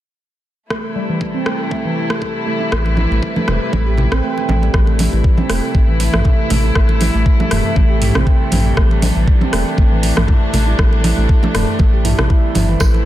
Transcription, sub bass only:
2.72 3.07 A1 medium
3.11 3.20 A1 medium
3.48 3.59 E1 medium
3.73 4.07 A1 medium
4.12 4.21 A1 medium
4.49 4.69 A1 medium
4.74 5.08 A1 medium
5.13 5.22 A1 loud
5.49 5.60 E1 medium
5.75 6.09 A1 medium
6.14 6.23 A1 medium
6.50 6.71 A1 medium
6.75 7.10 A1 loud
7.14 7.24 A1 medium
7.51 7.62 E1 medium
7.76 8.11 A1 medium
8.15 8.24 A1 medium
8.52 8.72 A1 medium
8.77 9.12 A1 medium
9.16 9.25 A1 medium
9.53 9.64 E1 medium
9.78 10.12 A1 medium
10.17 10.26 A1 medium
10.54 10.74 A1 medium
10.79 11.13 A1 loud
11.18 11.27 A1 medium
11.54 11.65 E1 medium
11.80 12.14 A1 medium
12.19 12.28 A1 medium
12.55 12.76 G1 medium
12.80 13.05 A1 loud

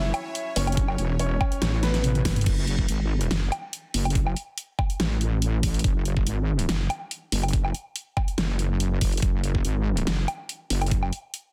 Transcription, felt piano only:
0.00 0.48 E4 medium
0.00 0.48 E5 loud
0.56 1.12 C#4 medium
0.56 1.12 C#5 medium
1.20 1.75 C#4 medium
1.20 1.75 C#5 medium
1.83 2.38 B3 medium
1.83 2.38 B4 loud

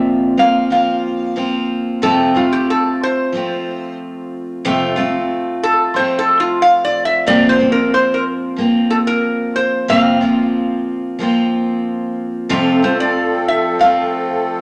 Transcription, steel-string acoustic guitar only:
0.00 0.38 F2 medium
0.00 0.38 C3 medium
0.00 0.38 F3 medium
0.00 0.37 A#3 medium
0.00 0.37 C4 medium
0.00 0.36 F4 medium
0.37 0.69 F3 soft
0.37 0.70 A#3 soft
0.37 0.71 C4 soft
0.37 0.71 F4 soft
0.70 1.35 F3 soft
0.70 1.35 A#3 soft
0.70 1.36 C4 soft
0.70 1.36 F4 soft
1.36 2.01 F3 soft
1.36 2.02 A#3 soft
1.36 2.02 C4 soft
1.36 2.02 F4 medium
2.02 2.35 F2 medium
2.02 2.35 C3 medium
2.02 2.36 F3 medium
2.02 2.35 A3 medium
2.02 2.34 C4 medium
2.02 2.33 F4 medium
2.34 3.32 F3 soft
2.34 3.33 A3 soft
2.34 3.35 C4 soft
2.34 3.36 F4 soft
3.32 4.65 F3 soft
3.32 4.64 A3 soft
3.32 4.65 C4 medium
3.37 4.65 F4 medium
4.65 4.98 F2 medium
4.65 4.98 C3 medium
4.65 4.97 F3 medium
4.65 4.96 A3 medium
4.65 4.96 C4 medium
4.65 4.95 F4 medium
4.96 5.94 F3 soft
4.96 5.94 A3 soft
4.96 5.97 C4 medium
4.96 5.98 F4 medium
5.94 7.27 F3 soft
5.94 7.27 A3 medium
5.94 7.27 C4 soft
5.98 7.27 F4 medium
7.26 7.60 F2 medium
7.26 7.60 C3 medium
7.26 7.60 F3 medium
7.26 7.60 A#3 medium
7.26 7.59 C4 medium
7.26 7.58 F4 medium
7.59 8.56 F3 soft
7.59 8.57 A#3 soft
7.59 8.59 C4 soft
7.59 8.60 F4 soft
8.56 9.89 F3 soft
8.56 9.88 A#3 medium
8.56 9.89 C4 medium
8.61 9.89 F4 medium
9.88 10.21 F2 medium
9.88 10.22 C3 medium
9.88 10.22 F3 medium
9.88 10.21 A#3 medium
9.88 10.20 C4 medium
9.88 10.20 F4 medium
10.21 11.18 F3 soft
10.21 11.19 A#3 soft
10.21 11.21 C4 soft
10.21 11.22 F4 soft
11.19 12.50 F3 medium
11.19 12.50 A#3 medium
11.19 12.50 C4 medium
11.19 12.51 F4 medium
12.49 12.82 F2 medium
12.49 12.83 C3 medium
12.49 12.83 F3 medium
12.49 12.83 A3 medium
12.49 12.82 C4 medium
12.49 12.81 F4 medium
12.82 13.79 F3 soft
12.82 13.80 A3 soft
12.82 13.82 C4 soft
12.82 13.83 F4 soft
13.79 14.61 F3 soft
13.79 14.61 A3 medium
13.79 14.61 C4 medium
13.83 14.61 F4 medium

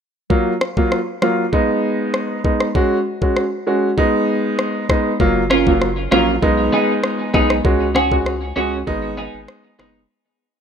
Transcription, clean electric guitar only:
5.50 5.70 C#4 medium
5.50 5.70 F4 medium
5.50 5.70 A#4 medium
6.11 6.31 C#4 medium
6.11 6.31 F4 medium
6.11 6.32 A#4 medium
6.73 6.92 B3 medium
6.73 6.93 D#4 medium
6.73 6.93 G#4 medium
7.34 7.53 B3 medium
7.34 7.54 D#4 medium
7.34 7.54 G#4 medium
7.95 8.14 C#4 medium
7.95 8.15 F#4 medium
7.95 8.15 G#4 loud
8.56 8.76 C#4 medium
8.56 8.76 F#4 medium
8.56 8.76 G#4 medium
9.17 9.37 B3 medium
9.17 9.37 D#4 medium
9.17 9.38 G#4 medium
9.79 9.98 B3 medium
9.79 9.99 D#4 medium
9.79 9.99 G#4 medium

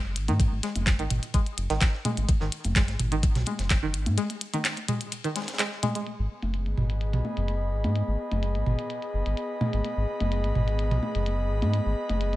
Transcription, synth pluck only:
0.28 0.32 D#3 loud
0.63 0.69 G#3 medium
0.99 1.02 D#3 loud
1.34 1.40 G#3 medium
1.70 1.73 D#3 loud
2.05 2.11 G#3 medium
2.41 2.44 D#3 loud
2.76 2.82 G#3 medium
3.12 3.15 D#3 loud
3.47 3.53 G#3 medium
3.83 3.86 D#3 loud
4.18 4.24 G#3 medium
4.54 4.57 D#3 loud
4.88 4.94 G#3 medium
5.24 5.28 D#3 loud
5.36 5.39 G#3 medium
5.59 5.65 G#3 medium
5.83 5.92 G#3 loud
5.95 6.01 G#3 medium

